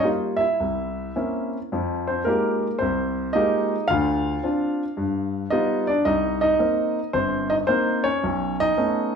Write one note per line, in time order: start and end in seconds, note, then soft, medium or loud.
0.02 0.44 G3 soft
0.02 0.44 A#3 soft
0.02 0.11 D#4 medium
0.02 0.44 F4 medium
0.37 1.48 E5 medium
0.41 1.15 E4 medium
0.60 1.09 C2 soft
1.16 1.56 A#3 soft
1.16 1.57 C4 soft
1.16 1.57 C#4 soft
1.16 1.57 E4 medium
1.72 2.21 F2 medium
1.72 2.21 F3 medium
2.07 2.27 C4 soft
2.07 2.27 C5 medium
2.25 2.66 G#3 soft
2.25 2.78 A#3 medium
2.25 2.66 D#4 soft
2.25 2.67 F4 soft
2.25 2.67 G4 medium
2.25 2.82 A#4 medium
2.79 3.29 C2 medium
2.79 3.32 C4 medium
2.79 3.36 C5 medium
3.33 3.74 G#3 soft
3.33 3.74 A#3 soft
3.33 3.86 D#4 medium
3.33 3.74 F4 soft
3.33 3.75 G4 medium
3.33 3.90 D#5 medium
3.88 4.37 D2 medium
3.88 4.37 D3 medium
3.88 4.43 F4 medium
3.88 5.46 F5 medium
4.43 4.82 C4 soft
4.43 4.82 D4 soft
4.43 4.82 F4 medium
4.97 5.44 G2 medium
5.50 5.91 G3 medium
5.50 5.90 B3 medium
5.50 5.86 D#4 medium
5.50 5.91 F4 medium
5.50 5.85 D#5 medium
5.87 6.05 D4 medium
5.87 6.06 D5 medium
6.05 6.52 C2 medium
6.05 6.40 D#4 medium
6.05 6.39 D#5 medium
6.41 6.59 D#4 medium
6.41 7.09 D#5 medium
6.59 6.98 A#3 soft
6.59 6.98 C4 soft
6.59 6.99 D#4 medium
7.13 7.61 G1 medium
7.13 7.49 C4 medium
7.13 7.52 C5 medium
7.50 7.56 D#4 medium
7.50 7.55 D#5 medium
7.67 8.07 A#3 medium
7.67 8.03 C4 medium
7.67 8.08 D#4 medium
7.67 8.06 C5 medium
8.04 8.56 C#4 medium
8.04 8.55 C#5 medium
8.24 8.71 B1 medium
8.60 8.77 D#4 medium
8.60 9.15 D#5 loud
8.77 9.15 A3 soft
8.77 9.15 B3 soft
8.77 9.15 C#4 soft
8.77 9.15 D#4 medium